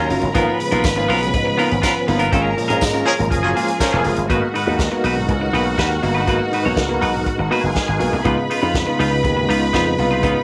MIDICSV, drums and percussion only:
0, 0, Header, 1, 2, 480
1, 0, Start_track
1, 0, Tempo, 493827
1, 339, Time_signature, 4, 2, 24, 8
1, 10143, End_track
2, 0, Start_track
2, 0, Title_t, "Drums"
2, 98, Note_on_c, 9, 46, 65
2, 195, Note_off_c, 9, 46, 0
2, 209, Note_on_c, 9, 42, 47
2, 306, Note_off_c, 9, 42, 0
2, 336, Note_on_c, 9, 42, 62
2, 339, Note_on_c, 9, 36, 95
2, 433, Note_off_c, 9, 42, 0
2, 437, Note_off_c, 9, 36, 0
2, 583, Note_on_c, 9, 46, 68
2, 680, Note_off_c, 9, 46, 0
2, 696, Note_on_c, 9, 42, 53
2, 793, Note_off_c, 9, 42, 0
2, 815, Note_on_c, 9, 54, 103
2, 819, Note_on_c, 9, 36, 123
2, 821, Note_on_c, 9, 42, 81
2, 824, Note_on_c, 9, 38, 111
2, 912, Note_off_c, 9, 54, 0
2, 916, Note_off_c, 9, 36, 0
2, 918, Note_off_c, 9, 42, 0
2, 921, Note_off_c, 9, 38, 0
2, 1063, Note_on_c, 9, 46, 72
2, 1160, Note_off_c, 9, 46, 0
2, 1192, Note_on_c, 9, 42, 51
2, 1289, Note_off_c, 9, 42, 0
2, 1298, Note_on_c, 9, 42, 57
2, 1300, Note_on_c, 9, 36, 113
2, 1395, Note_off_c, 9, 42, 0
2, 1398, Note_off_c, 9, 36, 0
2, 1547, Note_on_c, 9, 46, 70
2, 1644, Note_off_c, 9, 46, 0
2, 1665, Note_on_c, 9, 42, 47
2, 1762, Note_off_c, 9, 42, 0
2, 1779, Note_on_c, 9, 42, 64
2, 1780, Note_on_c, 9, 36, 91
2, 1784, Note_on_c, 9, 54, 108
2, 1785, Note_on_c, 9, 38, 94
2, 1876, Note_off_c, 9, 42, 0
2, 1877, Note_off_c, 9, 36, 0
2, 1881, Note_off_c, 9, 54, 0
2, 1882, Note_off_c, 9, 38, 0
2, 2020, Note_on_c, 9, 46, 71
2, 2117, Note_off_c, 9, 46, 0
2, 2131, Note_on_c, 9, 42, 48
2, 2228, Note_off_c, 9, 42, 0
2, 2259, Note_on_c, 9, 36, 114
2, 2259, Note_on_c, 9, 42, 61
2, 2356, Note_off_c, 9, 42, 0
2, 2357, Note_off_c, 9, 36, 0
2, 2506, Note_on_c, 9, 46, 72
2, 2603, Note_off_c, 9, 46, 0
2, 2623, Note_on_c, 9, 42, 47
2, 2720, Note_off_c, 9, 42, 0
2, 2733, Note_on_c, 9, 54, 111
2, 2737, Note_on_c, 9, 36, 100
2, 2741, Note_on_c, 9, 42, 73
2, 2744, Note_on_c, 9, 38, 116
2, 2831, Note_off_c, 9, 54, 0
2, 2835, Note_off_c, 9, 36, 0
2, 2839, Note_off_c, 9, 42, 0
2, 2841, Note_off_c, 9, 38, 0
2, 2981, Note_on_c, 9, 46, 70
2, 3078, Note_off_c, 9, 46, 0
2, 3111, Note_on_c, 9, 42, 49
2, 3209, Note_off_c, 9, 42, 0
2, 3220, Note_on_c, 9, 36, 113
2, 3222, Note_on_c, 9, 42, 70
2, 3317, Note_off_c, 9, 36, 0
2, 3320, Note_off_c, 9, 42, 0
2, 3466, Note_on_c, 9, 46, 76
2, 3563, Note_off_c, 9, 46, 0
2, 3578, Note_on_c, 9, 42, 44
2, 3675, Note_off_c, 9, 42, 0
2, 3697, Note_on_c, 9, 36, 98
2, 3697, Note_on_c, 9, 42, 60
2, 3702, Note_on_c, 9, 54, 101
2, 3704, Note_on_c, 9, 38, 103
2, 3794, Note_off_c, 9, 36, 0
2, 3794, Note_off_c, 9, 42, 0
2, 3799, Note_off_c, 9, 54, 0
2, 3801, Note_off_c, 9, 38, 0
2, 3929, Note_on_c, 9, 46, 64
2, 4026, Note_off_c, 9, 46, 0
2, 4045, Note_on_c, 9, 42, 49
2, 4143, Note_off_c, 9, 42, 0
2, 4177, Note_on_c, 9, 36, 95
2, 4177, Note_on_c, 9, 42, 53
2, 4274, Note_off_c, 9, 36, 0
2, 4274, Note_off_c, 9, 42, 0
2, 4424, Note_on_c, 9, 46, 63
2, 4522, Note_off_c, 9, 46, 0
2, 4656, Note_on_c, 9, 36, 110
2, 4660, Note_on_c, 9, 42, 75
2, 4662, Note_on_c, 9, 38, 108
2, 4753, Note_off_c, 9, 36, 0
2, 4757, Note_off_c, 9, 42, 0
2, 4760, Note_off_c, 9, 38, 0
2, 4896, Note_on_c, 9, 46, 65
2, 4993, Note_off_c, 9, 46, 0
2, 5138, Note_on_c, 9, 36, 90
2, 5138, Note_on_c, 9, 42, 57
2, 5235, Note_off_c, 9, 36, 0
2, 5235, Note_off_c, 9, 42, 0
2, 5387, Note_on_c, 9, 46, 70
2, 5484, Note_off_c, 9, 46, 0
2, 5619, Note_on_c, 9, 36, 82
2, 5623, Note_on_c, 9, 42, 52
2, 5629, Note_on_c, 9, 38, 109
2, 5716, Note_off_c, 9, 36, 0
2, 5720, Note_off_c, 9, 42, 0
2, 5726, Note_off_c, 9, 38, 0
2, 5860, Note_on_c, 9, 46, 58
2, 5957, Note_off_c, 9, 46, 0
2, 6098, Note_on_c, 9, 36, 101
2, 6099, Note_on_c, 9, 42, 54
2, 6195, Note_off_c, 9, 36, 0
2, 6196, Note_off_c, 9, 42, 0
2, 6344, Note_on_c, 9, 46, 64
2, 6441, Note_off_c, 9, 46, 0
2, 6576, Note_on_c, 9, 36, 100
2, 6580, Note_on_c, 9, 42, 71
2, 6582, Note_on_c, 9, 38, 118
2, 6674, Note_off_c, 9, 36, 0
2, 6677, Note_off_c, 9, 42, 0
2, 6679, Note_off_c, 9, 38, 0
2, 6823, Note_on_c, 9, 46, 70
2, 6920, Note_off_c, 9, 46, 0
2, 7059, Note_on_c, 9, 36, 90
2, 7059, Note_on_c, 9, 42, 57
2, 7156, Note_off_c, 9, 36, 0
2, 7156, Note_off_c, 9, 42, 0
2, 7310, Note_on_c, 9, 46, 73
2, 7407, Note_off_c, 9, 46, 0
2, 7539, Note_on_c, 9, 42, 59
2, 7540, Note_on_c, 9, 36, 96
2, 7545, Note_on_c, 9, 38, 101
2, 7636, Note_off_c, 9, 42, 0
2, 7637, Note_off_c, 9, 36, 0
2, 7643, Note_off_c, 9, 38, 0
2, 7778, Note_on_c, 9, 46, 58
2, 7875, Note_off_c, 9, 46, 0
2, 8019, Note_on_c, 9, 36, 90
2, 8020, Note_on_c, 9, 42, 57
2, 8116, Note_off_c, 9, 36, 0
2, 8117, Note_off_c, 9, 42, 0
2, 8267, Note_on_c, 9, 46, 63
2, 8364, Note_off_c, 9, 46, 0
2, 8499, Note_on_c, 9, 36, 112
2, 8505, Note_on_c, 9, 42, 67
2, 8507, Note_on_c, 9, 38, 115
2, 8597, Note_off_c, 9, 36, 0
2, 8602, Note_off_c, 9, 42, 0
2, 8604, Note_off_c, 9, 38, 0
2, 8748, Note_on_c, 9, 46, 63
2, 8845, Note_off_c, 9, 46, 0
2, 8982, Note_on_c, 9, 36, 115
2, 8985, Note_on_c, 9, 42, 65
2, 9079, Note_off_c, 9, 36, 0
2, 9083, Note_off_c, 9, 42, 0
2, 9236, Note_on_c, 9, 46, 69
2, 9333, Note_off_c, 9, 46, 0
2, 9463, Note_on_c, 9, 36, 86
2, 9464, Note_on_c, 9, 42, 59
2, 9471, Note_on_c, 9, 38, 99
2, 9560, Note_off_c, 9, 36, 0
2, 9561, Note_off_c, 9, 42, 0
2, 9568, Note_off_c, 9, 38, 0
2, 9702, Note_on_c, 9, 46, 59
2, 9799, Note_off_c, 9, 46, 0
2, 9943, Note_on_c, 9, 36, 109
2, 9944, Note_on_c, 9, 42, 58
2, 10040, Note_off_c, 9, 36, 0
2, 10041, Note_off_c, 9, 42, 0
2, 10143, End_track
0, 0, End_of_file